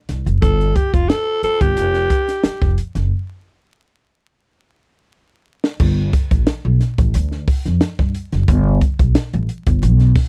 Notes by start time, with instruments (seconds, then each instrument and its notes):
0.09 upright bass C2, snare, closed hi-hat
0.26 upright bass F#1, closed hi-hat
0.42 upright bass G1, alto saxophone A4, kick, closed hi-hat
0.61 closed hi-hat
0.76 alto saxophone G4, kick, closed hi-hat
0.94 upright bass F1, alto saxophone F4, kick, closed hi-hat
1.09 alto saxophone A4, snare, closed hi-hat
1.43 alto saxophone A4, muted upright bass stroke, closed hi-hat
1.61 upright bass G1, alto saxophone G4, kick, closed hi-hat
1.76 upright bass F1, closed hi-hat
1.94 snare, closed hi-hat
2.10 kick, closed hi-hat
2.28 snare, closed hi-hat
2.43 muted upright bass stroke, snare, closed hi-hat
2.61 upright bass F1, kick, snare
2.78 closed hi-hat
2.95 upright bass F#1, snare, closed hi-hat
5.64 snare
5.80 upright bass G1, kick, crash
6.13 kick, closed hi-hat
6.31 upright bass A1, kick, closed hi-hat
6.47 snare, closed hi-hat
6.65 upright bass B1
6.80 snare, closed hi-hat
6.98 upright bass A1, kick, closed hi-hat
7.14 upright bass D2, closed hi-hat
7.32 snare
7.48 kick, open hi-hat
7.65 upright bass F2, snare, closed hi-hat
7.81 snare, closed hi-hat
7.99 upright bass G2, kick, snare
8.15 closed hi-hat
8.32 upright bass F#1, snare, closed hi-hat
8.48 upright bass G1, kick, closed hi-hat
8.81 kick, closed hi-hat
8.99 upright bass B1, kick, closed hi-hat
9.15 snare, closed hi-hat
9.33 upright bass A1, closed hi-hat
9.49 closed hi-hat
9.66 upright bass G1, kick, closed hi-hat
9.83 upright bass B1, closed hi-hat
10.00 snare, closed hi-hat
10.16 kick, snare, open hi-hat